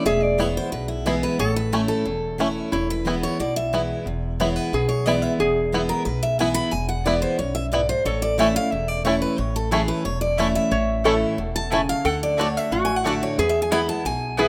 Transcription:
Already playing: resonator guitar played with a steel bar E4
0.05 upright bass E1, steel-string acoustic guitar E2 E5, resonator guitar played with a steel bar G#4
0.23 steel-string acoustic guitar D5
0.38 steel-string acoustic guitar E3 G#3 B3 E4 C#5, five-string banjo B3 E4
0.57 steel-string acoustic guitar C5
0.72 upright bass B1, steel-string acoustic guitar B2 B4
0.88 steel-string acoustic guitar E4
1.06 steel-string acoustic guitar E3 G#3 B3 E4 G#4, five-string banjo B3 E4
1.23 steel-string acoustic guitar B4
1.39 upright bass A1, steel-string acoustic guitar A2 C#5, resonator guitar played with a steel bar A4
1.56 steel-string acoustic guitar B4
1.72 steel-string acoustic guitar E3 A3 C#4 E4 A4, five-string banjo A3 C#4 E4
1.88 steel-string acoustic guitar A4
2.05 upright bass E1, steel-string acoustic guitar E2
2.38 steel-string acoustic guitar E3 A3 C#4 E4, five-string banjo A3 C#4 E4
2.72 upright bass E1, steel-string acoustic guitar E2 C#5, resonator guitar played with a steel bar E4
2.90 steel-string acoustic guitar B4
3.05 steel-string acoustic guitar E3 G#3 B3 E4, five-string banjo B3 E4
3.23 steel-string acoustic guitar C#5
3.40 upright bass B1, steel-string acoustic guitar B2 D5
3.56 steel-string acoustic guitar E5
3.73 steel-string acoustic guitar E3 G#3 B3 E4, five-string banjo B3 E4
4.06 upright bass E1, steel-string acoustic guitar E2
4.40 steel-string acoustic guitar E3 G#3 B3 E4 C#5, five-string banjo B3 E4
4.56 steel-string acoustic guitar B4
4.73 upright bass B1, steel-string acoustic guitar B2, resonator guitar played with a steel bar G#4
4.89 steel-string acoustic guitar C#5
5.06 steel-string acoustic guitar E3 G#3 B3 E4 D5, five-string banjo B3 E4
5.22 steel-string acoustic guitar E5
5.39 upright bass E1, steel-string acoustic guitar E2, resonator guitar played with a steel bar G#4
5.72 steel-string acoustic guitar E3 G#3 B3 E4, five-string banjo B3 E4
5.89 steel-string acoustic guitar A#4
6.05 upright bass B1, steel-string acoustic guitar B2 B4
6.23 steel-string acoustic guitar E5
6.39 steel-string acoustic guitar E3 G#3 B3 E4 G#5, five-string banjo B3 E4
6.54 steel-string acoustic guitar B5
6.71 upright bass E1, steel-string acoustic guitar E2 G#5
6.89 steel-string acoustic guitar F#5
7.05 steel-string acoustic guitar E3 G#3 B3 E4 D5, five-string banjo B3 E4
7.22 steel-string acoustic guitar C5
7.39 upright bass B1, steel-string acoustic guitar F#2 C#5
7.55 steel-string acoustic guitar E5
7.72 steel-string acoustic guitar G#2 D5, five-string banjo B3 E4
7.89 steel-string acoustic guitar C5
8.05 upright bass A1, steel-string acoustic guitar A2 C#5, resonator guitar played with a steel bar A4
8.22 steel-string acoustic guitar D5
8.38 steel-string acoustic guitar E3 A3 C#4 E4 E5, mandolin A3 E4 C#5 A5, five-string banjo A3 C#4 E4
8.54 steel-string acoustic guitar C#4 E4 F5
8.72 upright bass E1, steel-string acoustic guitar E2 E5
8.88 steel-string acoustic guitar D5
9.05 steel-string acoustic guitar E3 A3 C#4 E4 C#5, mandolin A3 E4 C#5 A5, five-string banjo A3 C#4 E4
9.22 steel-string acoustic guitar B4
9.38 upright bass A1, steel-string acoustic guitar A2 C#5
9.56 steel-string acoustic guitar A4
9.71 steel-string acoustic guitar E3 A3 C#4 E4 G#4, mandolin A3 E4 C#5 A5, five-string banjo A3 C#4 E4
9.88 steel-string acoustic guitar B4
10.05 upright bass E1, steel-string acoustic guitar E2 C#5
10.21 steel-string acoustic guitar D5
10.37 steel-string acoustic guitar E3 A3 C#4 E4 E5, mandolin A3 E4 C#5 A5, five-string banjo A3 C#4 E4
10.55 steel-string acoustic guitar E5
10.71 upright bass A1, steel-string acoustic guitar A2, resonator guitar played with a steel bar C#5
11.04 steel-string acoustic guitar E3 A3 C#4 E4, mandolin A3 E4 C#5 A5, five-string banjo A3 C#4 E4, resonator guitar played with a steel bar A4
11.38 upright bass E1, steel-string acoustic guitar B2
11.56 steel-string acoustic guitar A5
11.70 steel-string acoustic guitar C#3 G#5, mandolin A3 E4 C#5 A5, five-string banjo A3 C#4 E4
11.89 steel-string acoustic guitar F5
12.05 upright bass D2, steel-string acoustic guitar D3 F#5, resonator guitar played with a steel bar A4
12.23 steel-string acoustic guitar D5
12.37 steel-string acoustic guitar D3 A3 D4 F#4 C#5, mandolin A3 F#4 D5 A5, five-string banjo A3 D4 F#4
12.57 steel-string acoustic guitar E5
12.71 upright bass A1, steel-string acoustic guitar A2 F#5, resonator guitar played with a steel bar F#4
12.85 steel-string acoustic guitar G#5
12.96 steel-string acoustic guitar F#5
13.04 steel-string acoustic guitar D3 A3 D4 F#4 E5, mandolin A3 F#4 D5 A5, five-string banjo A3 D4 F#4
13.23 steel-string acoustic guitar C#5
13.38 upright bass E2, steel-string acoustic guitar E2 B4, resonator guitar played with a steel bar G#4
13.49 steel-string acoustic guitar E5
13.62 steel-string acoustic guitar G#5
13.71 steel-string acoustic guitar E3 G#3 B3 E4 B5, mandolin B3 E4 B4 G#5, five-string banjo B3 E4
13.89 steel-string acoustic guitar A5
14.05 upright bass B1, steel-string acoustic guitar B2 G#5
14.37 steel-string acoustic guitar E3 G#3 B3 E4, mandolin B3 E4 B4 G#5, five-string banjo B3 E4, resonator guitar played with a steel bar G#4

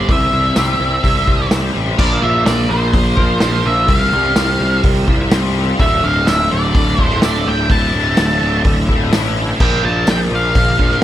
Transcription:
Already playing: overdriven electric guitar C5, lead electric guitar D5
0.08 picked electric bass C2, overdriven electric guitar C3 G3 C4 E4 G4 C5, lead electric guitar E5, kick, open hi-hat
0.32 picked electric bass C2, overdriven electric guitar C4 E4 G4 C5
0.56 picked electric bass C2, overdriven electric guitar C4 E4 G4 C5, snare, open hi-hat, tambourine
0.80 picked electric bass C2, overdriven electric guitar C3 G3 C4 E4 G4 C5
1.03 picked electric bass C2, overdriven electric guitar C4 E4 G4 C5, kick, open hi-hat
1.27 picked electric bass C2, overdriven electric guitar C4 E4 G4 C5, kick
1.51 picked electric bass C2, overdriven electric guitar C3 G3 C4 E4 G4 C5, snare, open hi-hat, tambourine
1.75 picked electric bass A1, overdriven electric guitar C4 E4 G4 C5
1.98 picked electric bass A#1, overdriven electric guitar A#2 F3 A#3 F4 A#4, lead electric guitar D5, kick, crash
2.22 picked electric bass A#1, lead electric guitar E5
2.45 picked electric bass A#1, lead electric guitar D5, snare, open hi-hat, tambourine
2.70 picked electric bass A#1, lead electric guitar C5
2.94 picked electric bass A#1, kick, open hi-hat
3.16 picked electric bass A#1, overdriven electric guitar A#2 F3 A#3 F4 A#4, kick
3.40 picked electric bass A#1, overdriven electric guitar A#2 F3 A#3 F4 A#4, lead electric guitar C5, snare, open hi-hat, tambourine
3.65 picked electric bass A#1, lead electric guitar E5
3.88 picked electric bass C2, overdriven electric guitar C3 G3 C4 F4 G4 C5, lead electric guitar F5, kick, open hi-hat
4.13 picked electric bass C2
4.36 picked electric bass C2, snare, open hi-hat, tambourine
4.60 picked electric bass C2
4.83 picked electric bass C2, kick, open hi-hat
5.08 picked electric bass C2, overdriven electric guitar C3 G3 C4 F4 G4 C5, kick
5.31 picked electric bass C2, overdriven electric guitar C3 G3 C4 F4 G4 C5, snare, open hi-hat, tambourine
5.79 picked electric bass D1, overdriven electric guitar D2 A2 D3 A3 E4, lead electric guitar E5, kick, open hi-hat
6.04 picked electric bass D1, lead electric guitar F5
6.27 picked electric bass D1, lead electric guitar E5, snare, open hi-hat, tambourine
6.52 picked electric bass D1, lead electric guitar D5
6.75 picked electric bass D1, kick, open hi-hat
6.98 picked electric bass D1, overdriven electric guitar D2 A2 D3 A3 E4, lead electric guitar C5, kick
7.10 snare
7.22 picked electric bass D1, overdriven electric guitar D2 A2 D3 A3 E4, lead electric guitar D5, snare, open hi-hat, tambourine
7.46 picked electric bass D1, lead electric guitar G5
7.69 picked electric bass D1, overdriven electric guitar D2 A2 D3 A3 E4, lead electric guitar A5, kick, open hi-hat
7.94 picked electric bass D1
8.17 picked electric bass D1, snare, open hi-hat, tambourine
8.42 picked electric bass D1
8.65 picked electric bass D1, kick, open hi-hat
8.88 picked electric bass D1, overdriven electric guitar D2 A2 D3 A3 E4, kick
9.11 picked electric bass A1, overdriven electric guitar D2 A2 D3 A3, snare, open hi-hat, tambourine
9.16 overdriven electric guitar E4
9.60 picked electric bass A#1, overdriven electric guitar A#2 F3 A#3 F4 A#4, lead electric guitar G5, kick, crash
9.83 picked electric bass A#1, lead electric guitar A5
10.07 picked electric bass A#1, lead electric guitar G5, snare, open hi-hat, tambourine
10.31 picked electric bass A#1
10.35 lead electric guitar F5
10.55 picked electric bass A#1, kick, open hi-hat
10.79 picked electric bass A#1, overdriven electric guitar A#2 F3 A#3 F4 A#4, kick
10.91 snare

